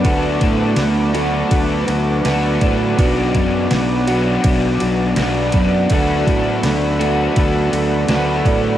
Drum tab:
RD |xxxxxxxx|xxxxxxxx|xxxxxxxx|
SD |--o---o-|--o---o-|--o---o-|
BD |oo--o--o|oo--o--o|oo--o--o|